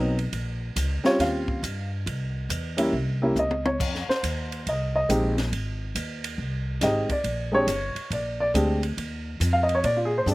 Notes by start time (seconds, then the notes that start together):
Already playing: B1 F#3 B3 C4 D#4
0.19 ride
0.33 A#1, kick, ride
0.76 C#2, kick, hi-hat pedal, ride
1.04 G3 C4 C#4 F4 C#5, muted upright bass stroke, snare
1.19 D#2 F5, kick, snare, ride
1.48 kick
1.63 G2, kick, hi-hat pedal, ride
2.06 C2, kick, ride
2.49 E2, kick, hi-hat pedal, ride
2.77 G3 A#3 C#4 E4, ride
2.93 C2, kick
3.22 G3 A#3 C#4 E4
3.36 C#2 D#5, hi-hat pedal, high tom
3.51 high tom
3.66 C#5, high tom
3.80 F2, kick, crash
3.95 snare
4.08 C5, muted upright bass stroke, snare
4.23 D#2, kick, hi-hat pedal, ride
4.52 ride
4.67 C2 D#5, kick, ride
4.96 D#5
5.09 A#1 G#3 C4 D#4 G4, kick, hi-hat pedal, ride
5.38 snare, ride
5.52 G#1, kick, ride
5.95 D#2, kick, hi-hat pedal, ride
6.24 ride
6.38 C2, kick
6.81 G#1 G#3 C4 D#4 G4 D#5, kick, snare, hi-hat pedal, ride
7.09 D5, muted upright bass stroke, kick, ride
7.24 A#1, kick, ride
7.52 G#3 C4 D4 G4 C#5
7.67 G1, kick, hi-hat pedal, ride
7.95 muted upright bass stroke, ride
8.10 A#1 D5, kick, ride
8.40 D5
8.54 D2 G#3 C4 D4 G4, kick, hi-hat pedal, ride
8.83 ride
8.97 D#2, kick, ride
9.40 F2, kick, hi-hat pedal, ride
9.53 F5
9.63 D#5
9.69 ride
9.75 C#5
9.84 A#2 D5, kick, ride
9.97 F4
10.05 G#4
10.18 C5
10.26 G2 C4 D4 G4 G#4, hi-hat pedal
10.31 D5